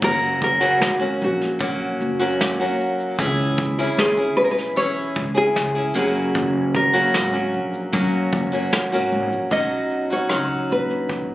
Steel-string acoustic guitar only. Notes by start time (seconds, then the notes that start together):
0.02 F#3 A#3 C#4 F#4
0.60 F#2 C#3 F#3 A#3 C#4 F#4
1.00 F#3 A#3 C#4 F#4
1.59 F#3 A#3 C#4 F#4
2.19 F#3 A#3 C#4 F#4
2.60 F#3 A#3 C#4 F#4
3.18 E3 C#4 E4 G#4
3.78 C#3 E3 C#4 E4 G#4
4.17 C#4 E4 G#4
4.76 E3 C#4 E4 G#4
5.35 C#4 E4 G#4
5.75 C#4 E4 G#4
5.94 F#2 C#3 F#3 A#3 C#4 F#4
6.93 F#2 C#3 F#3 A#3 C#4 F#4
7.33 F#3 A#3 C#4 F#4
7.93 F#3 A#3 C#4 F#4
8.52 F#3 A#3 C#4 F#4
8.92 F#3 A#3 C#4 F#4
9.51 B2 F#3 C#4 D#4 F#4
10.10 C#4 D#4 F#4
10.29 F#3 C#4 D#4 F#4